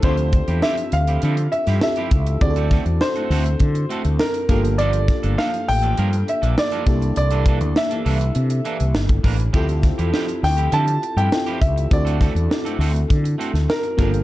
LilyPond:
<<
  \new Staff \with { instrumentName = "Grand piano" } { \time 4/4 \key d \minor \tempo 4 = 101 c''4 e''8 f''4 e''8 e''4 | d''4 c''2 bes'4 | d''4 f''8 g''4 e''8 d''4 | d''4 e''2 r4 |
r4. g''8 a''8. g''8. e''8 | d''4. r4. bes'4 | }
  \new Staff \with { instrumentName = "FM electric piano" } { \time 4/4 \key d \minor <c' d' f' g' a'>2. <c' e' f' g' a'>4 | <c' d' e' fis' gis' a'>2.~ <c' d' e' fis' gis' a'>8 <bes d' f' g' a'>8~ | <bes d' f' g' a'>2.~ <bes d' f' g' a'>8 <bes d' e' g' a'>8~ | <bes d' e' g' a'>2.~ <bes d' e' g' a'>8 r8 |
<c' e' f' g' a'>2. <c' e' f' g' a'>4 | <c' d' e' fis' a'>2.~ <c' d' e' fis' a'>8 <bes d' f' g' a'>8 | }
  \new Staff \with { instrumentName = "Clean electric guitar" } { \time 4/4 \key d \minor <f c' e' g'>16 r8 <f c' e' g'>16 <f c' e' g'>16 r8 <f c' e' g'>16 <f c' e' a'>16 r8 <f c' e' g'>16 r16 <f c' e' g'>16 r8 | r16 <a c' fis' a'>16 <a c' fis' a'>16 r8 <a c' fis' a'>16 <a c' fis' a'>16 r8. <a c' fis' a'>16 r8. <f bes d' bes'>16 r16 | <f bes d' a'>16 r8 <f bes d' a'>16 <f bes d' a'>16 r8 <f bes d' a'>16 <f bes d' bes'>16 r8 <f bes d' a'>16 r16 <f bes d' a'>16 r8 | r16 <e bes d' a'>16 <e bes d' a'>16 r8 <e bes d' a'>16 <e bes d' a'>16 r8. <e bes d' a'>16 r8. <e bes d' bes'>16 r16 |
<f c' e' g'>16 r8 <f c' e' g'>16 <f c' e' g'>16 r8 <f c' e' g'>16 <f c' e' a'>16 r8 <f c' e' g'>16 r16 <f c' e' g'>16 r8 | r16 <a c' fis' a'>16 <a c' fis' a'>16 r8 <a c' fis' a'>16 <a c' fis' a'>16 r8. <a c' fis' a'>16 r8. <f bes d' bes'>16 r16 | }
  \new Staff \with { instrumentName = "Fretless electric bass" } { \clef bass \time 4/4 \key d \minor d,8. e,16 r8 d,8 d8 r16 g,16 r8 cis,8 | d,8. e,16 r8 d,8 d8 r16 d,16 r8 g,,8~ | g,,8. g,,16 r8 a,,8 g,8 r16 bes,,16 r8 c,8 | c,8. d,16 r8 c,8 c8 r16 c,16 g,,8 a,,8 |
d,8. e,16 r8 d,8 d8 r16 g,16 r8 cis,8 | d,8. e,16 r8 d,8 d8 r16 d,16 r8 g,,8 | }
  \new DrumStaff \with { instrumentName = "Drums" } \drummode { \time 4/4 <hh bd>16 hh16 <hh bd>16 hh16 sn16 hh16 hh16 hh16 hh16 hh16 hh16 <hh sn>16 sn16 hh16 <hh bd>16 hh16 | <hh bd>16 hh16 <hh bd sn>16 hh16 sn16 hh16 <hho sn>16 hh16 <hh bd>16 hh16 hh16 hh16 sn16 hh16 <hh bd>16 hh16 | hh16 hh16 <hh bd sn>16 hh16 sn16 hh16 hho16 hh16 hh16 hh16 hh16 hh16 sn16 hh16 <hh bd>16 hh16 | hh16 hh16 <hh bd>16 hh16 sn16 hh16 hho16 hh16 hh16 hh16 hh16 hh16 sn16 <hh bd>16 <hho bd>16 hh16 |
<hh bd>16 hh16 <hh bd sn>16 hh16 sn16 hh16 <hho sn>16 hh16 hh16 hh16 hh16 hh16 sn16 hh16 <hh bd>16 hh16 | <hh bd>16 hh16 <hh bd sn>16 hh16 sn16 hh16 hho16 hh16 <hh bd>16 hh16 hh16 <hh sn>16 sn16 hh16 <hh bd>16 hh16 | }
>>